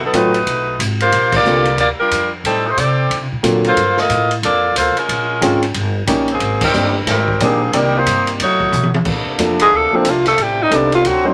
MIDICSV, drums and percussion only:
0, 0, Header, 1, 2, 480
1, 0, Start_track
1, 0, Key_signature, -2, "major"
1, 0, Tempo, 330579
1, 1632, Time_signature, 4, 2, 24, 8
1, 16461, End_track
2, 0, Start_track
2, 0, Title_t, "Drums"
2, 192, Note_on_c, 9, 36, 22
2, 197, Note_on_c, 9, 44, 58
2, 197, Note_on_c, 9, 51, 61
2, 337, Note_off_c, 9, 36, 0
2, 342, Note_off_c, 9, 44, 0
2, 342, Note_off_c, 9, 51, 0
2, 497, Note_on_c, 9, 51, 46
2, 642, Note_off_c, 9, 51, 0
2, 672, Note_on_c, 9, 36, 25
2, 679, Note_on_c, 9, 51, 65
2, 817, Note_off_c, 9, 36, 0
2, 825, Note_off_c, 9, 51, 0
2, 1149, Note_on_c, 9, 36, 22
2, 1159, Note_on_c, 9, 44, 68
2, 1159, Note_on_c, 9, 51, 74
2, 1294, Note_off_c, 9, 36, 0
2, 1304, Note_off_c, 9, 44, 0
2, 1304, Note_off_c, 9, 51, 0
2, 1458, Note_on_c, 9, 51, 48
2, 1603, Note_off_c, 9, 51, 0
2, 1626, Note_on_c, 9, 36, 27
2, 1631, Note_on_c, 9, 51, 64
2, 1771, Note_off_c, 9, 36, 0
2, 1776, Note_off_c, 9, 51, 0
2, 1920, Note_on_c, 9, 49, 74
2, 1923, Note_on_c, 9, 36, 83
2, 2065, Note_off_c, 9, 49, 0
2, 2069, Note_off_c, 9, 36, 0
2, 2103, Note_on_c, 9, 44, 49
2, 2249, Note_off_c, 9, 44, 0
2, 2401, Note_on_c, 9, 51, 46
2, 2547, Note_off_c, 9, 51, 0
2, 2583, Note_on_c, 9, 36, 30
2, 2585, Note_on_c, 9, 51, 56
2, 2728, Note_off_c, 9, 36, 0
2, 2730, Note_off_c, 9, 51, 0
2, 3065, Note_on_c, 9, 36, 25
2, 3069, Note_on_c, 9, 44, 58
2, 3069, Note_on_c, 9, 51, 74
2, 3210, Note_off_c, 9, 36, 0
2, 3215, Note_off_c, 9, 44, 0
2, 3215, Note_off_c, 9, 51, 0
2, 3545, Note_on_c, 9, 36, 24
2, 3553, Note_on_c, 9, 51, 65
2, 3690, Note_off_c, 9, 36, 0
2, 3699, Note_off_c, 9, 51, 0
2, 4024, Note_on_c, 9, 36, 23
2, 4029, Note_on_c, 9, 44, 51
2, 4029, Note_on_c, 9, 51, 69
2, 4169, Note_off_c, 9, 36, 0
2, 4174, Note_off_c, 9, 44, 0
2, 4174, Note_off_c, 9, 51, 0
2, 4505, Note_on_c, 9, 36, 24
2, 4513, Note_on_c, 9, 51, 64
2, 4650, Note_off_c, 9, 36, 0
2, 4658, Note_off_c, 9, 51, 0
2, 4985, Note_on_c, 9, 36, 21
2, 4990, Note_on_c, 9, 44, 71
2, 4990, Note_on_c, 9, 51, 68
2, 5130, Note_off_c, 9, 36, 0
2, 5135, Note_off_c, 9, 44, 0
2, 5135, Note_off_c, 9, 51, 0
2, 5291, Note_on_c, 9, 51, 43
2, 5437, Note_off_c, 9, 51, 0
2, 5465, Note_on_c, 9, 36, 24
2, 5471, Note_on_c, 9, 51, 65
2, 5611, Note_off_c, 9, 36, 0
2, 5616, Note_off_c, 9, 51, 0
2, 5766, Note_on_c, 9, 38, 40
2, 5911, Note_off_c, 9, 38, 0
2, 5946, Note_on_c, 9, 36, 27
2, 5947, Note_on_c, 9, 44, 52
2, 5947, Note_on_c, 9, 51, 64
2, 6091, Note_off_c, 9, 36, 0
2, 6093, Note_off_c, 9, 44, 0
2, 6093, Note_off_c, 9, 51, 0
2, 6256, Note_on_c, 9, 51, 48
2, 6401, Note_off_c, 9, 51, 0
2, 6427, Note_on_c, 9, 36, 20
2, 6435, Note_on_c, 9, 51, 66
2, 6572, Note_off_c, 9, 36, 0
2, 6580, Note_off_c, 9, 51, 0
2, 6908, Note_on_c, 9, 36, 20
2, 6911, Note_on_c, 9, 44, 58
2, 6911, Note_on_c, 9, 51, 79
2, 7053, Note_off_c, 9, 36, 0
2, 7056, Note_off_c, 9, 44, 0
2, 7056, Note_off_c, 9, 51, 0
2, 7213, Note_on_c, 9, 51, 47
2, 7358, Note_off_c, 9, 51, 0
2, 7387, Note_on_c, 9, 36, 29
2, 7393, Note_on_c, 9, 51, 69
2, 7533, Note_off_c, 9, 36, 0
2, 7538, Note_off_c, 9, 51, 0
2, 7867, Note_on_c, 9, 36, 20
2, 7870, Note_on_c, 9, 44, 53
2, 7870, Note_on_c, 9, 51, 72
2, 8012, Note_off_c, 9, 36, 0
2, 8015, Note_off_c, 9, 44, 0
2, 8015, Note_off_c, 9, 51, 0
2, 8168, Note_on_c, 9, 51, 50
2, 8313, Note_off_c, 9, 51, 0
2, 8339, Note_on_c, 9, 51, 72
2, 8344, Note_on_c, 9, 36, 22
2, 8484, Note_off_c, 9, 51, 0
2, 8489, Note_off_c, 9, 36, 0
2, 8818, Note_on_c, 9, 44, 65
2, 8818, Note_on_c, 9, 51, 76
2, 8823, Note_on_c, 9, 36, 23
2, 8964, Note_off_c, 9, 44, 0
2, 8964, Note_off_c, 9, 51, 0
2, 8968, Note_off_c, 9, 36, 0
2, 9115, Note_on_c, 9, 51, 46
2, 9260, Note_off_c, 9, 51, 0
2, 9296, Note_on_c, 9, 51, 59
2, 9303, Note_on_c, 9, 36, 20
2, 9441, Note_off_c, 9, 51, 0
2, 9448, Note_off_c, 9, 36, 0
2, 9597, Note_on_c, 9, 49, 80
2, 9603, Note_on_c, 9, 36, 76
2, 9742, Note_off_c, 9, 49, 0
2, 9748, Note_off_c, 9, 36, 0
2, 9780, Note_on_c, 9, 44, 61
2, 9925, Note_off_c, 9, 44, 0
2, 10262, Note_on_c, 9, 38, 46
2, 10265, Note_on_c, 9, 51, 72
2, 10267, Note_on_c, 9, 36, 21
2, 10407, Note_off_c, 9, 38, 0
2, 10410, Note_off_c, 9, 51, 0
2, 10412, Note_off_c, 9, 36, 0
2, 10568, Note_on_c, 9, 36, 55
2, 10714, Note_off_c, 9, 36, 0
2, 10748, Note_on_c, 9, 36, 29
2, 10750, Note_on_c, 9, 44, 56
2, 10750, Note_on_c, 9, 51, 75
2, 10893, Note_off_c, 9, 36, 0
2, 10895, Note_off_c, 9, 44, 0
2, 10895, Note_off_c, 9, 51, 0
2, 11227, Note_on_c, 9, 51, 78
2, 11229, Note_on_c, 9, 36, 22
2, 11372, Note_off_c, 9, 51, 0
2, 11374, Note_off_c, 9, 36, 0
2, 11709, Note_on_c, 9, 44, 56
2, 11709, Note_on_c, 9, 51, 80
2, 11711, Note_on_c, 9, 36, 25
2, 11855, Note_off_c, 9, 44, 0
2, 11855, Note_off_c, 9, 51, 0
2, 11856, Note_off_c, 9, 36, 0
2, 12010, Note_on_c, 9, 51, 52
2, 12155, Note_off_c, 9, 51, 0
2, 12192, Note_on_c, 9, 36, 27
2, 12192, Note_on_c, 9, 51, 73
2, 12337, Note_off_c, 9, 36, 0
2, 12337, Note_off_c, 9, 51, 0
2, 12490, Note_on_c, 9, 36, 51
2, 12635, Note_off_c, 9, 36, 0
2, 12663, Note_on_c, 9, 48, 50
2, 12666, Note_on_c, 9, 44, 64
2, 12808, Note_off_c, 9, 48, 0
2, 12811, Note_off_c, 9, 44, 0
2, 12825, Note_on_c, 9, 48, 58
2, 12970, Note_off_c, 9, 48, 0
2, 12985, Note_on_c, 9, 48, 82
2, 13130, Note_off_c, 9, 48, 0
2, 13142, Note_on_c, 9, 49, 71
2, 13147, Note_on_c, 9, 36, 71
2, 13287, Note_off_c, 9, 49, 0
2, 13293, Note_off_c, 9, 36, 0
2, 13627, Note_on_c, 9, 36, 22
2, 13628, Note_on_c, 9, 44, 52
2, 13628, Note_on_c, 9, 51, 68
2, 13772, Note_off_c, 9, 36, 0
2, 13773, Note_off_c, 9, 44, 0
2, 13773, Note_off_c, 9, 51, 0
2, 13931, Note_on_c, 9, 51, 67
2, 14076, Note_off_c, 9, 51, 0
2, 14107, Note_on_c, 9, 36, 24
2, 14252, Note_off_c, 9, 36, 0
2, 14587, Note_on_c, 9, 44, 67
2, 14587, Note_on_c, 9, 51, 75
2, 14589, Note_on_c, 9, 36, 23
2, 14732, Note_off_c, 9, 44, 0
2, 14732, Note_off_c, 9, 51, 0
2, 14735, Note_off_c, 9, 36, 0
2, 14888, Note_on_c, 9, 38, 37
2, 14891, Note_on_c, 9, 51, 47
2, 15033, Note_off_c, 9, 38, 0
2, 15036, Note_off_c, 9, 51, 0
2, 15069, Note_on_c, 9, 51, 60
2, 15071, Note_on_c, 9, 36, 20
2, 15214, Note_off_c, 9, 51, 0
2, 15216, Note_off_c, 9, 36, 0
2, 15554, Note_on_c, 9, 36, 22
2, 15557, Note_on_c, 9, 44, 62
2, 15557, Note_on_c, 9, 51, 66
2, 15699, Note_off_c, 9, 36, 0
2, 15702, Note_off_c, 9, 44, 0
2, 15702, Note_off_c, 9, 51, 0
2, 15859, Note_on_c, 9, 51, 47
2, 16004, Note_off_c, 9, 51, 0
2, 16035, Note_on_c, 9, 36, 20
2, 16039, Note_on_c, 9, 51, 68
2, 16181, Note_off_c, 9, 36, 0
2, 16185, Note_off_c, 9, 51, 0
2, 16461, End_track
0, 0, End_of_file